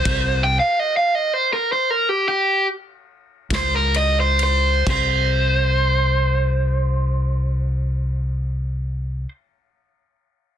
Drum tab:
CC |x-----------|x-----------|
RD |x--------xxx|------------|
SD |---------o--|------------|
BD |o--------o--|o-----------|